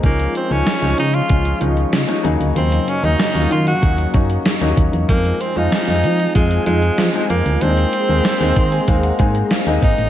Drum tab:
HH |xxxxxxxxxxxxxxxx|xxxxxxxxxxxxxxxx|xxxxxxxxxxxxxxxx|xxxxxxxxxxxxxxox|
SD |----o-------o---|----o-------o---|----o-------o---|----o-------o---|
BD |o-------o-------|--------o-o---o-|o-------o-------|------o-o-o---o-|